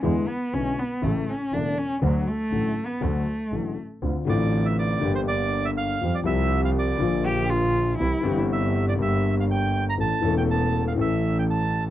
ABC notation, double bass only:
X:1
M:4/4
L:1/8
Q:1/4=121
K:D
V:1 name="Double bass" clef=bass
E,, z B,,, z A,,, z E,,, z | D,, z A,,, z D,, z A,,, z | [K:Dm] D,, A,,,3 G,,,4 | F,, C,,3 B,,,4 |
C,, G,,,3 G,,,4 | A,,, E,,,3 A,,,4 |]